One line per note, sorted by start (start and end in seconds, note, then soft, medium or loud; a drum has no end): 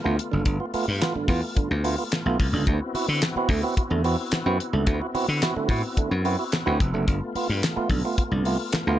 0.00 2.63 A3 medium
0.00 7.04 B3 medium
0.00 2.63 F4 medium
0.04 0.17 D2 medium
0.04 0.16 A3 medium
0.04 0.17 B3 medium
0.04 0.17 F4 medium
0.19 closed hi-hat medium
0.32 0.46 F#1 medium
0.32 0.44 G2 medium
0.32 0.44 D3 medium
0.45 0.58 G1 loud
0.45 0.58 G2 medium
0.45 0.58 D3 medium
0.45 kick loud
0.45 closed hi-hat medium
0.60 0.66 B3 soft
0.60 0.66 F4 soft
0.74 0.86 A3 medium
0.74 0.86 B3 medium
0.74 0.86 F4 medium
0.74 muted slap bass stroke soft
0.74 open hi-hat medium
0.88 1.00 G2 medium
1.02 1.14 B3 medium
1.02 1.14 F4 medium
1.02 snare loud
1.02 clap medium
1.02 closed hi-hat medium
1.16 1.27 G2 medium
1.16 1.27 D3 medium
1.16 muted slap bass stroke soft
1.28 1.41 E2 medium
1.28 1.41 B3 medium
1.28 1.41 F4 medium
1.28 kick medium
1.28 open hi-hat medium
1.57 1.69 G2 medium
1.57 1.69 D3 medium
1.57 muted slap bass stroke soft
1.57 kick medium
1.57 closed hi-hat medium
1.71 1.94 D2 medium
1.84 1.96 A3 medium
1.84 1.96 B3 medium
1.84 1.96 F4 medium
1.84 open hi-hat medium
1.98 2.04 B3 soft
1.98 2.04 F4 soft
2.12 snare loud
2.12 clap medium
2.12 closed hi-hat loud
2.26 2.38 B1 medium
2.26 2.38 A3 medium
2.26 2.38 B3 medium
2.26 2.38 F4 medium
2.40 2.52 C2 medium
2.40 kick loud
2.40 open hi-hat medium
2.53 2.65 C#2 medium
2.53 2.65 G2 medium
2.53 2.65 D3 medium
2.67 2.79 D2 medium
2.67 2.80 D3 medium
2.67 2.80 A3 medium
2.67 7.04 C4 medium
2.67 7.04 E4 medium
2.67 7.04 F#4 medium
2.67 kick loud
2.67 closed hi-hat medium
2.94 3.07 E4 medium
2.94 3.07 F#4 medium
2.94 muted slap bass stroke soft
2.94 open hi-hat medium
3.08 3.20 D3 loud
3.22 snare loud
3.22 clap medium
3.22 closed hi-hat medium
3.36 3.48 B3 medium
3.36 3.48 C4 medium
3.36 3.49 E4 medium
3.36 3.49 F#4 medium
3.36 muted slap bass stroke soft
3.49 3.61 D2 medium
3.49 3.62 D3 medium
3.49 3.62 A3 medium
3.49 kick loud
3.49 open hi-hat medium
3.63 3.75 B3 medium
3.63 3.75 C4 medium
3.63 3.75 E4 medium
3.63 3.75 F#4 medium
3.77 3.83 E4 soft
3.77 3.83 F#4 soft
3.77 muted slap bass stroke soft
3.77 kick loud
3.77 closed hi-hat loud
3.90 4.15 E2 medium
3.90 4.03 D3 medium
3.90 4.03 A3 medium
4.04 4.17 B3 medium
4.04 4.17 C4 medium
4.04 4.17 E4 medium
4.04 4.17 F#4 medium
4.04 open hi-hat medium
4.32 muted slap bass stroke medium
4.32 snare loud
4.32 clap loud
4.32 closed hi-hat medium
4.46 4.58 F#2 medium
4.46 4.58 B3 medium
4.46 4.58 C4 medium
4.46 4.58 E4 medium
4.46 4.58 F#4 medium
4.60 closed hi-hat medium
4.73 4.85 C#2 medium
4.73 4.85 D3 medium
4.73 4.85 A3 medium
4.87 4.99 D2 loud
4.87 5.00 D3 medium
4.87 4.99 A3 medium
4.87 kick loud
4.87 closed hi-hat medium
5.01 5.07 E4 soft
5.01 5.07 F#4 soft
5.14 5.27 B3 medium
5.14 5.27 C4 medium
5.14 5.27 E4 medium
5.14 5.27 F#4 medium
5.14 muted slap bass stroke soft
5.14 open hi-hat medium
5.28 5.40 D3 loud
5.42 5.54 E4 medium
5.42 5.55 F#4 medium
5.42 snare loud
5.42 clap medium
5.42 closed hi-hat medium
5.56 5.68 D3 medium
5.56 5.68 A3 medium
5.56 muted slap bass stroke soft
5.69 5.81 A2 medium
5.69 5.82 E4 medium
5.69 5.83 F#4 medium
5.69 kick medium
5.69 open hi-hat medium
5.97 6.10 D3 medium
5.97 6.10 A3 medium
5.97 muted slap bass stroke soft
5.97 kick medium
5.97 closed hi-hat loud
6.11 6.35 F#2 medium
6.25 6.37 B3 medium
6.25 6.37 C4 medium
6.25 6.37 E4 medium
6.25 6.37 F#4 medium
6.25 open hi-hat medium
6.39 6.45 E4 soft
6.39 6.45 F#4 soft
6.52 snare loud
6.52 clap medium
6.52 closed hi-hat medium
6.66 6.78 D2 medium
6.66 6.78 B3 medium
6.66 6.78 C4 medium
6.66 6.78 E4 medium
6.66 6.78 F#4 medium
6.80 6.94 F1 medium
6.80 kick loud
6.80 closed hi-hat medium
6.94 7.08 F#1 medium
6.94 7.06 D3 medium
6.94 7.06 A3 medium
7.07 7.20 G1 loud
7.07 7.20 G2 medium
7.07 7.20 D3 medium
7.07 8.99 A3 medium
7.07 8.99 B3 medium
7.07 8.99 F4 medium
7.07 kick loud
7.07 closed hi-hat medium
7.35 7.47 B3 medium
7.35 7.48 F4 medium
7.35 muted slap bass stroke soft
7.35 open hi-hat medium
7.49 7.61 G2 medium
7.63 snare loud
7.63 clap loud
7.63 closed hi-hat medium
7.76 7.88 A3 medium
7.76 7.89 B3 medium
7.76 7.89 F4 medium
7.76 muted slap bass stroke soft
7.90 8.02 B1 medium
7.90 8.02 G2 medium
7.90 8.02 D3 medium
7.90 kick medium
7.90 open hi-hat medium
8.05 8.16 A3 medium
8.05 8.16 B3 medium
8.05 8.17 F4 medium
8.18 8.24 B3 soft
8.18 8.24 F4 soft
8.18 muted slap bass stroke soft
8.18 kick loud
8.18 closed hi-hat medium
8.31 8.55 C2 medium
8.31 8.43 G2 medium
8.31 8.44 D3 medium
8.45 8.58 A3 medium
8.45 8.58 B3 medium
8.45 8.58 F4 medium
8.45 open hi-hat medium
8.72 muted slap bass stroke soft
8.72 snare loud
8.72 clap loud
8.72 closed hi-hat loud
8.87 8.99 D2 medium
8.87 8.99 A3 medium
8.87 8.99 B3 medium
8.87 8.99 F4 medium